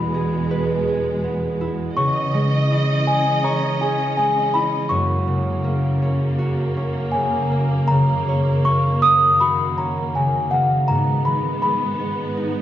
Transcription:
Already playing: string section E2 B2 G#3, harp E3 B3 E4, celesta B5
0.14 harp G#4
0.51 harp B4
0.87 harp G#4
1.24 harp B3
1.61 harp E4
1.97 harp C#3, string section E3 C#4 D#5, celesta C#6
2.34 harp G#3
2.71 harp E4
3.07 harp G#4, celesta G#5
3.44 harp C#5, celesta A#5
3.81 harp G#4, celesta G#5
4.17 harp G#3, celesta G#5
4.54 harp E4, celesta B5
4.89 harp F#2, string section F#2 C#3 A#3, celesta C#6
5.27 harp C#3
5.64 harp A#3
6.02 harp C#4
6.39 harp F#4
6.76 harp C#4
7.12 harp C#3, celesta G#5
7.52 harp A#3
7.88 harp C#3, string section D#3, celesta A#5
8.28 harp C#5
8.65 harp A#3, celesta C#6
9.02 harp C#4, celesta D#6
9.40 harp F#4, celesta B5
9.78 harp C#4, celesta A#5
10.15 harp C#3, celesta G#5
10.51 harp A#3, celesta F#5
10.88 harp G#2, string section G#2 B3, celesta A#5
11.25 harp D#3, celesta B5
11.62 harp G#3, celesta B5
12.00 harp B3
12.37 harp D#4

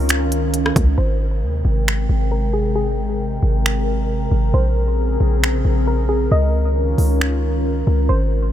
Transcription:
Already playing: 808-style bass C#2, ambient pad D#3 C#4 F4 A#4
0.09 finger snap, closed hi-hat
0.32 closed hi-hat
0.54 closed hi-hat
0.66 cross-stick
0.76 808-style bass C#2, kick, closed hi-hat
0.98 808-style bass G#1, ambient pad C3 G#3 A#4 G5, synth pluck C5
1.43 808-style bass D#2
1.65 808-style bass G#1
1.88 finger snap
2.09 808-style bass G#1
2.31 synth pluck A#4
2.53 synth pluck G#4
2.76 synth pluck G#4
3.43 808-style bass G#1
3.66 finger snap
4.31 808-style bass G#1
4.54 808-style bass A#1, ambient pad C#3 C4 G#4, synth pluck C5
5.20 808-style bass A#1
5.44 finger snap
5.65 808-style bass A#1
5.87 synth pluck A#4
6.09 synth pluck G#4
6.32 808-style bass C#2, ambient pad D#3 C#4 F4, synth pluck D#5
6.98 808-style bass C#2, open hi-hat
7.21 finger snap
7.87 808-style bass C#2
8.09 808-style bass G#1, ambient pad C3 G#3 G5, synth pluck C5

